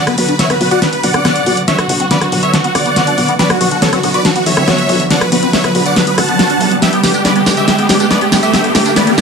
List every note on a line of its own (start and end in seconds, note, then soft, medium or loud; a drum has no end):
0.00 0.11 D3 medium
0.00 0.11 F#3 medium
0.00 0.11 B3 medium
0.00 0.11 F#4 medium
0.00 riser medium
0.07 0.15 B3 medium
0.07 0.15 B4 medium
0.07 cross-stick medium
0.07 closed hi-hat soft
0.18 0.31 B1 medium
0.18 0.33 D3 medium
0.18 0.33 F#3 medium
0.18 0.33 B3 medium
0.18 0.33 F#4 medium
0.18 0.26 F#4 medium
0.18 0.26 B4 medium
0.18 open hi-hat loud
0.28 0.34 D4 loud
0.28 0.37 B4 medium
0.28 closed hi-hat medium
0.39 0.47 D3 medium
0.39 0.47 F#3 medium
0.39 0.47 B3 medium
0.39 0.48 B3 medium
0.39 0.47 F#4 medium
0.39 0.48 C#5 medium
0.39 0.48 E5 medium
0.39 snare soft
0.39 closed hi-hat medium
0.50 0.57 D3 medium
0.50 0.57 F#3 medium
0.50 0.57 B3 medium
0.50 0.56 C4 loud
0.50 0.57 F#4 medium
0.50 0.58 B4 medium
0.50 cross-stick medium
0.50 closed hi-hat medium
0.60 0.74 B1 medium
0.60 0.76 D3 medium
0.60 0.76 F#3 medium
0.60 0.76 B3 medium
0.60 0.66 B3 medium
0.60 0.76 F#4 medium
0.60 0.69 B4 medium
0.60 open hi-hat medium
0.71 0.80 F#4 loud
0.71 0.80 D5 medium
0.71 0.80 F#5 medium
0.71 closed hi-hat medium
0.82 0.88 D4 medium
0.82 0.91 B4 medium
0.82 snare soft
0.82 closed hi-hat medium
0.93 0.96 B3 medium
0.93 1.01 B4 medium
0.93 closed hi-hat medium
1.03 1.17 B1 medium
1.03 1.11 D3 medium
1.03 1.11 F#3 medium
1.03 1.11 B3 medium
1.03 1.11 F#4 medium
1.03 1.59 D5 medium
1.03 1.59 F#5 loud
1.03 open hi-hat loud
1.14 1.22 D3 medium
1.14 1.22 F#3 medium
1.14 1.22 B3 medium
1.14 1.20 C4 loud
1.14 1.22 F#4 medium
1.14 cross-stick medium
1.14 closed hi-hat medium
1.25 1.40 D3 medium
1.25 1.40 F#3 medium
1.25 1.31 B3 loud
1.25 1.40 B3 medium
1.25 1.40 F#4 medium
1.25 cross-stick medium
1.25 snare soft
1.25 closed hi-hat medium
1.36 closed hi-hat medium
1.46 1.60 B1 medium
1.46 1.61 D3 medium
1.46 1.61 F#3 medium
1.46 1.61 B3 medium
1.46 1.52 F#4 medium
1.46 1.61 F#4 medium
1.46 open hi-hat medium
1.57 closed hi-hat medium
1.68 1.83 D3 medium
1.68 1.83 F#3 medium
1.68 1.83 B3 medium
1.68 1.73 D4 medium
1.68 1.83 F#4 medium
1.68 1.76 C#5 medium
1.68 1.76 E5 loud
1.68 snare soft
1.68 closed hi-hat medium
1.79 1.87 F#4 medium
1.79 cross-stick medium
1.79 closed hi-hat soft
1.89 2.03 B1 medium
1.89 2.04 D3 medium
1.89 2.04 F#3 medium
1.89 1.93 B3 medium
1.89 2.04 B3 medium
1.89 1.98 F#4 medium
1.89 2.04 F#4 medium
1.89 open hi-hat loud
2.00 2.05 C4 loud
2.00 2.08 F#4 medium
2.00 closed hi-hat medium
2.11 2.18 D3 medium
2.11 2.18 F#3 medium
2.11 2.16 B3 medium
2.11 2.18 B3 medium
2.11 2.18 F#4 medium
2.11 2.19 B4 medium
2.11 2.19 D5 medium
2.11 snare medium
2.11 closed hi-hat medium
2.21 2.29 D3 medium
2.21 2.29 F#3 medium
2.21 2.29 B3 medium
2.21 2.29 F#4 medium
2.21 2.30 F#4 medium
2.21 cross-stick medium
2.21 closed hi-hat medium
2.32 2.45 B1 loud
2.32 2.47 D3 medium
2.32 2.47 F#3 medium
2.32 2.47 B3 medium
2.32 2.47 F#4 medium
2.32 2.38 F#4 medium
2.32 2.41 F#4 medium
2.32 open hi-hat loud
2.43 2.51 C#5 medium
2.43 2.51 E5 medium
2.43 closed hi-hat medium
2.53 2.59 D4 medium
2.53 2.62 F#4 medium
2.53 snare medium
2.53 closed hi-hat medium
2.64 2.68 B3 loud
2.64 2.73 F#4 medium
2.64 closed hi-hat medium
2.75 2.88 B1 medium
2.75 2.83 D3 medium
2.75 2.82 F#3 medium
2.75 2.82 B3 medium
2.75 2.78 C4 medium
2.75 2.83 F#4 medium
2.75 3.31 D5 medium
2.75 3.31 F#5 loud
2.75 cross-stick medium
2.75 open hi-hat loud
2.85 2.93 D3 medium
2.85 2.93 F#3 medium
2.85 2.93 B3 medium
2.85 2.91 B3 loud
2.85 2.93 F#4 medium
2.85 closed hi-hat medium
2.96 3.11 D3 medium
2.96 3.11 F#3 medium
2.96 3.11 B3 medium
2.96 3.11 F#4 medium
2.96 3.02 F#4 loud
2.96 snare medium
2.96 closed hi-hat medium
3.07 3.16 D4 loud
3.07 closed hi-hat medium
3.18 3.31 B1 medium
3.18 3.33 D3 medium
3.18 3.33 F#3 medium
3.18 3.33 B3 medium
3.18 3.33 F#4 medium
3.18 open hi-hat medium
3.29 3.34 B3 medium
3.29 closed hi-hat medium
3.39 3.54 D3 medium
3.39 3.54 F#3 medium
3.39 3.54 B3 medium
3.39 3.43 C4 medium
3.39 3.54 F#4 medium
3.39 3.48 B4 medium
3.39 3.48 D5 loud
3.39 snare medium
3.39 closed hi-hat medium
3.50 3.58 B3 medium
3.50 3.58 F#4 medium
3.50 cross-stick medium
3.50 closed hi-hat soft
3.60 3.74 B1 loud
3.60 3.76 D3 medium
3.60 3.76 F#3 medium
3.60 3.76 B3 medium
3.60 3.76 F#4 medium
3.60 3.69 F#4 medium
3.60 open hi-hat loud
3.71 3.77 D4 loud
3.71 3.80 F#4 medium
3.71 closed hi-hat soft
3.82 3.90 D3 medium
3.82 3.89 F#3 medium
3.82 3.90 B3 medium
3.82 3.91 B3 medium
3.82 3.90 F#4 medium
3.82 3.91 A4 medium
3.82 3.91 C#5 medium
3.82 snare medium
3.82 closed hi-hat medium
3.92 4.00 D3 medium
3.92 4.00 F#3 medium
3.92 4.00 B3 medium
3.92 3.98 C4 loud
3.92 4.00 F#4 medium
3.92 4.01 F#4 medium
3.92 cross-stick medium
3.92 closed hi-hat medium
4.03 4.17 B1 loud
4.03 4.18 D3 medium
4.03 4.18 F#3 medium
4.03 4.09 B3 medium
4.03 4.19 B3 medium
4.03 4.18 F#4 medium
4.03 4.12 F#4 medium
4.03 open hi-hat medium
4.14 4.23 F#4 loud
4.14 4.23 B4 medium
4.14 4.23 D5 medium
4.14 closed hi-hat medium
4.25 4.31 D4 medium
4.25 4.33 F#4 medium
4.25 snare medium
4.25 closed hi-hat medium
4.36 4.39 B3 medium
4.36 4.44 F#4 medium
4.36 closed hi-hat medium
4.46 4.60 B1 medium
4.46 4.54 D3 medium
4.46 4.54 F#3 medium
4.46 4.54 B3 medium
4.46 4.54 F#4 medium
4.46 5.02 C#5 medium
4.46 5.02 E5 loud
4.46 open hi-hat loud
4.57 4.64 D3 medium
4.57 4.64 F#3 medium
4.57 4.65 B3 medium
4.57 4.63 C4 loud
4.57 4.64 F#4 medium
4.57 cross-stick medium
4.57 closed hi-hat soft
4.68 4.83 D3 medium
4.68 4.83 F#3 medium
4.68 4.83 B3 medium
4.68 4.73 B3 loud
4.68 4.83 F#4 medium
4.68 cross-stick medium
4.68 snare medium
4.68 closed hi-hat medium
4.78 closed hi-hat soft
4.89 5.03 B1 medium
4.89 5.04 D3 medium
4.89 5.04 F#3 medium
4.89 5.04 B3 medium
4.89 5.04 F#4 medium
4.89 4.95 F#4 medium
4.89 open hi-hat loud
5.00 closed hi-hat medium
5.10 5.26 D3 medium
5.10 5.26 F#3 medium
5.10 5.26 B3 medium
5.10 5.16 D4 medium
5.10 5.26 F#4 medium
5.10 5.19 D5 medium
5.10 5.19 F#5 loud
5.10 snare medium
5.10 closed hi-hat medium
5.21 5.30 B4 medium
5.21 cross-stick medium
5.21 closed hi-hat soft
5.32 5.45 B1 loud
5.32 5.47 D3 medium
5.32 5.47 F#3 medium
5.32 5.35 B3 medium
5.32 5.47 B3 medium
5.32 5.47 F#4 medium
5.32 5.41 B4 medium
5.32 open hi-hat loud
5.43 5.48 C4 loud
5.43 5.51 B4 medium
5.43 closed hi-hat soft
5.53 5.61 D3 medium
5.53 5.61 F#3 medium
5.53 5.61 B3 medium
5.53 5.59 B3 loud
5.53 5.61 F#4 medium
5.53 5.62 C#5 medium
5.53 5.62 E5 medium
5.53 snare medium
5.53 closed hi-hat medium
5.64 5.72 D3 medium
5.64 5.72 F#3 medium
5.64 5.72 B3 medium
5.64 5.72 F#4 medium
5.64 5.73 B4 medium
5.64 cross-stick medium
5.64 closed hi-hat soft
5.75 5.88 B1 medium
5.75 5.90 D3 medium
5.75 5.90 F#3 medium
5.75 5.90 B3 medium
5.75 5.90 F#4 medium
5.75 5.81 F#4 medium
5.75 5.84 B4 medium
5.75 open hi-hat medium
5.86 5.94 D5 medium
5.86 5.94 F#5 loud
5.86 closed hi-hat soft
5.96 6.02 D4 medium
5.96 6.05 B4 medium
5.96 snare medium
5.96 closed hi-hat medium
6.07 6.11 B3 loud
6.07 6.16 B4 medium
6.07 closed hi-hat medium
6.18 6.31 A1 loud
6.18 6.25 D3 medium
6.18 6.25 F#3 medium
6.18 6.25 B3 medium
6.18 6.21 C4 medium
6.18 6.25 F#4 medium
6.18 6.74 F#5 medium
6.18 6.74 A5 loud
6.18 cross-stick medium
6.18 open hi-hat loud
6.28 6.36 D3 medium
6.28 6.36 F#3 medium
6.28 6.36 B3 medium
6.28 6.34 B3 loud
6.28 6.36 F#4 medium
6.28 closed hi-hat medium
6.39 6.54 D3 medium
6.39 6.54 F#3 medium
6.39 6.54 B3 medium
6.39 6.54 F#4 medium
6.39 6.45 F#4 loud
6.39 snare medium
6.39 closed hi-hat medium
6.50 6.59 D4 medium
6.50 closed hi-hat medium
6.60 6.74 B1 loud
6.60 6.76 D3 medium
6.60 6.75 F#3 medium
6.60 6.76 B3 medium
6.60 6.75 F#4 medium
6.60 open hi-hat loud
6.71 6.77 B3 medium
6.71 closed hi-hat medium
6.82 6.97 D3 medium
6.82 6.97 G3 medium
6.82 6.97 B3 medium
6.82 6.86 B3 medium
6.82 6.97 G4 medium
6.82 6.91 G4 medium
6.82 6.91 E5 medium
6.82 snare medium
6.82 closed hi-hat medium
6.82 tambourine soft
6.93 7.01 B3 medium
6.93 7.01 G4 medium
6.93 closed hi-hat soft
7.03 7.17 G1 loud
7.03 7.18 D3 medium
7.03 7.18 G3 medium
7.03 7.18 B3 medium
7.03 7.18 G4 medium
7.03 7.12 G4 medium
7.03 snare medium
7.03 open hi-hat loud
7.03 tambourine medium
7.14 7.20 D4 medium
7.14 7.23 G4 medium
7.14 closed hi-hat soft
7.14 tambourine soft
7.25 7.32 D3 medium
7.25 7.32 G3 medium
7.25 7.32 B3 medium
7.25 7.33 B3 medium
7.25 7.32 G4 medium
7.25 7.33 B4 medium
7.25 7.33 D5 medium
7.25 snare medium
7.25 closed hi-hat medium
7.25 tambourine soft
7.36 7.43 D3 medium
7.36 7.43 G3 medium
7.36 7.43 B3 medium
7.36 7.41 B3 medium
7.36 7.43 G4 medium
7.36 7.44 G4 medium
7.36 closed hi-hat soft
7.46 7.60 G1 loud
7.46 7.61 D3 medium
7.46 7.61 G3 medium
7.46 7.61 B3 medium
7.46 7.52 B3 medium
7.46 7.61 G4 medium
7.46 7.55 G4 medium
7.46 snare medium
7.46 open hi-hat medium
7.46 tambourine medium
7.57 7.66 G4 medium
7.57 7.66 E5 medium
7.57 closed hi-hat soft
7.57 tambourine soft
7.68 7.71 B3 medium
7.68 7.76 G4 medium
7.68 7.76 E5 medium
7.68 snare medium
7.68 closed hi-hat medium
7.68 tambourine soft
7.78 7.87 B3 medium
7.78 7.87 G4 medium
7.78 closed hi-hat medium
7.89 8.03 G1 medium
7.89 7.97 D3 medium
7.89 7.97 G3 medium
7.89 7.97 B3 medium
7.89 7.97 G4 medium
7.89 7.98 G4 medium
7.89 snare medium
7.89 open hi-hat loud
7.89 tambourine medium
8.00 8.07 D3 medium
8.00 8.07 G3 medium
8.00 8.07 B3 medium
8.00 8.06 D4 loud
8.00 8.07 G4 medium
8.00 8.08 G4 medium
8.00 closed hi-hat soft
8.00 tambourine soft
8.11 8.26 D3 medium
8.11 8.26 G3 medium
8.11 8.26 B3 medium
8.11 8.19 B3 medium
8.11 8.26 G4 medium
8.11 8.19 B4 medium
8.11 8.19 D5 medium
8.11 snare medium
8.11 closed hi-hat medium
8.11 tambourine soft
8.21 8.27 B3 loud
8.21 8.30 G4 medium
8.21 closed hi-hat soft
8.32 8.45 G1 medium
8.32 8.47 D3 medium
8.32 8.47 G3 medium
8.32 8.47 B3 medium
8.32 8.38 B3 medium
8.32 8.47 G4 medium
8.32 8.40 G4 medium
8.32 snare medium
8.32 open hi-hat medium
8.32 tambourine medium
8.43 8.51 G4 medium
8.43 8.51 E5 medium
8.43 closed hi-hat medium
8.43 tambourine soft
8.53 8.69 D3 medium
8.53 8.69 G3 medium
8.53 8.69 B3 medium
8.53 8.57 B3 medium
8.53 8.69 G4 medium
8.53 8.62 G4 medium
8.53 8.62 E5 loud
8.53 snare medium
8.53 closed hi-hat medium
8.53 tambourine soft
8.64 8.73 B3 medium
8.64 8.73 G4 medium
8.64 closed hi-hat medium
8.75 8.88 G1 loud
8.75 8.90 D3 medium
8.75 8.90 G3 medium
8.75 8.90 B3 medium
8.75 8.83 G4 medium
8.75 8.90 G4 medium
8.75 snare medium
8.75 open hi-hat loud
8.75 tambourine medium
8.86 8.91 D4 medium
8.86 8.94 G4 medium
8.86 closed hi-hat medium
8.86 tambourine soft
8.96 9.04 D3 medium
8.96 9.04 G3 medium
8.96 9.05 B3 medium
8.96 9.04 B3 medium
8.96 9.04 G4 medium
8.96 9.05 B4 medium
8.96 9.05 D5 medium
8.96 snare medium
8.96 closed hi-hat medium
8.96 tambourine soft
9.07 9.15 D3 medium
9.07 9.15 G3 medium
9.07 9.13 B3 loud
9.07 9.15 B3 medium
9.07 9.16 G4 medium
9.07 9.15 G4 medium
9.07 closed hi-hat medium
9.18 9.21 G1 loud
9.18 9.21 D3 medium
9.18 9.21 G3 medium
9.18 9.21 B3 medium
9.18 9.21 G4 medium
9.18 snare medium
9.18 open hi-hat medium
9.18 tambourine medium